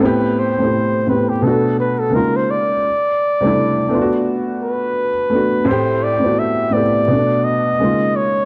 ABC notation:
X:1
M:4/4
L:1/16
Q:"Swing 16ths" 1/4=85
K:Ador
V:1 name="Flugelhorn"
B2 c4 B G A2 B A ^A c d2- | d8 z2 B6 | c2 d2 e2 d4 ^d4 ^c2 |]
V:2 name="Upright piano"
[A,,B,CEG]2 z [A,,A,CEG]2 z [A,,B,CEG]2 [B,,A,B,DF]3 z [^C,^G,^A,^D^E]3 z | z3 [C,G,A,DE]2 z [A,B,D=F^F]6- [A,B,D=F^F] z [A,B,DF]2 | [A,,A,CEG]2 z [A,,B,CEF]2 z [A,,B,CEG]2 [B,,A,B,DF]3 z [^C,^G,^A,^D^E]3 z |]